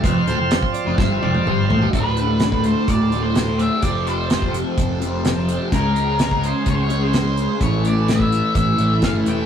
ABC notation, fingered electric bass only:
X:1
M:4/4
L:1/16
Q:1/4=127
K:Ddor
V:1 name="Fingered electric bass" clef=bass
F,,,2 D,,, F,,,2 z2 F,,, G,,,2 F,,,2 G,,,2 A,,, G,,, | D,,,8 D,,,8 | F,,,8 F,,,8 | ^C,,8 C,,8 |
A,,,8 A,,,2 A,,,2 z2 E,,,2 |]